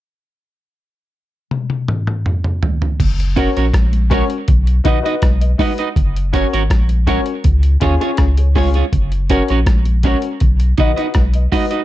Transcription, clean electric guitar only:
\new Staff \with { instrumentName = "Clean electric guitar" } { \time 4/4 \key fis \major \tempo 4 = 81 r1 | r8 <cis' fis' ais' cis''>16 <cis' fis' ais' cis''>16 r8 <cis' fis' ais' cis''>16 r8. <dis' fis' b' dis''>16 <dis' fis' b' dis''>16 r8 <dis' fis' b' dis''>16 <dis' fis' b' dis''>16 | r8 <cis' fis' ais' cis''>16 <cis' fis' ais' cis''>16 r8 <cis' fis' ais' cis''>16 r8. <cis' eis' gis' cis''>16 <cis' eis' gis' cis''>16 r8 <cis' eis' gis' cis''>16 <cis' eis' gis' cis''>16 | r8 <cis' fis' ais' cis''>16 <cis' fis' ais' cis''>16 r8 <cis' fis' ais' cis''>16 r8. <dis' fis' b' dis''>16 <dis' fis' b' dis''>16 r8 <dis' fis' b' dis''>16 <dis' fis' b' dis''>16 | }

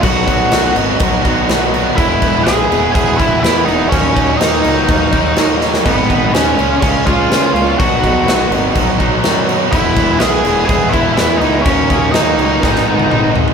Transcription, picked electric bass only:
\new Staff \with { instrumentName = "Picked electric bass" } { \clef bass \time 4/4 \key e \lydian \tempo 4 = 124 b,,8 b,,8 b,,8 gis,,8 b,,8 b,,8 b,,4 | e,,8 e,,8 b,,8 e,,8 e,,8 e,,8 e,8 e,,8 | dis,8 dis,8 dis,8 cis,8 dis,8 dis,8 dis,4 | gis,,8 gis,,8 dis,8 cis,8 cis,8 cis,8 cis8 cis,8 |
b,,8 b,,8 b,,8 gis,,8 b,,8 b,,8 fis,4 | e,,8 e,,8 b,,8 e,,8 e,,8 e,,8 e,8 cis,8 | dis,8 dis,8 dis,8 cis,8 gis,,8 gis,,8 gis,,4 | }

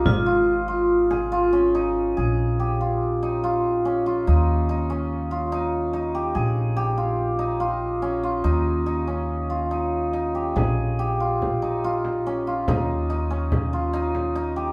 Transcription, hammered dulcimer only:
\new Staff \with { instrumentName = "Hammered dulcimer" } { \time 5/4 \key bes \dorian \tempo 4 = 143 ees'8 f'4 f'4 aes'8 f'8 des'8 ees'4 | aes'4 g'8 f'4 ees'8 f'4 des'8 f'8 | ees'4 ees'8 des'4 f'8 ees'4 ees'8 g'8 | aes'4 g'8 f'4 ees'8 f'4 des'8 f'8 |
ees'4 ees'8 des'4 f'8 ees'4 ees'8 g'8 | aes'4 g'8 f'4 ees'8 f'4 des'8 f'8 | ees'4 ees'8 des'4 f'8 ees'4 ees'8 g'8 | }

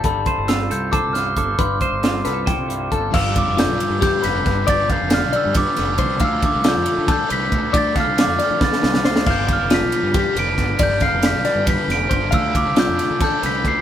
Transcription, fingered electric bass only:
\new Staff \with { instrumentName = "Fingered electric bass" } { \clef bass \time 7/8 \key g \mixolydian \tempo 4 = 137 g,,8 r16 g,,8. c,8. c,8. g,,8 | g,,8 r16 g,,8. c,8. c,8. g,,8 | g,,8. f,,8 b,,16 r16 g,8 r16 f,,8 g,,8 | g,,8. f,,8 b,,16 r16 g,8 r16 f,,8 c,8 |
d,8. c,8 f,16 r16 d8 r16 c,8 d,8 | d,8. c,8 f,16 r16 d8 r16 c,8 d,8 | g,,8. f,,8 b,,16 r16 g,8 r16 f,,8 g,,8 | g,,8. f,,8 b,,16 r16 g,8 r16 f,,8 g,,8 |
d,8. c,8 f,16 r16 d8 r16 c,8 d,8 | }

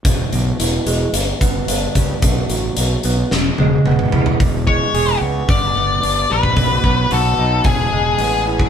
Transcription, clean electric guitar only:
\new Staff \with { instrumentName = "Clean electric guitar" } { \clef bass \time 4/4 \key e \major \tempo 4 = 111 e,8 b,8 e8 gis8 g,8 b8 d'8 g8 | b,8 fis8 fis8 b8 e,8 gis8 b8 e8 | e,8 gis8 gis'8 b8 g,8 b8 d'8 g8 | b,8 b8 fis'8 dis'8 e,8 gis8 b8 e8 | }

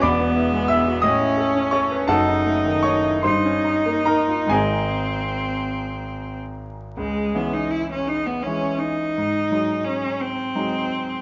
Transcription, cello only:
\new Staff \with { instrumentName = "Cello" } { \time 6/8 \key cis \minor \tempo 4. = 54 b4. cis'4. | dis'4. dis'4. | bis2~ bis16 r8. | gis8 b16 dis'16 e'16 cis'16 dis'16 b16 cis'8 dis'8~ |
dis'4 cis'8 bis4. | }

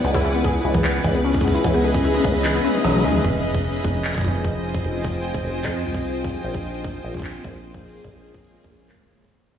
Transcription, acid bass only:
\new Staff \with { instrumentName = "Acid bass" } { \clef bass \time 4/4 \key f \minor \tempo 4 = 150 des,4. des,4 des,4. | des,4. des,4 r8 ces,8 ees,8 | f,,4. f,,4 f,,4. | f,,4. f,,8 f,8 c,4. |
bes,,4. bes,,4 bes,,4. | bes,,4. bes,,8. des,16 aes,,4~ aes,,16 r16 | }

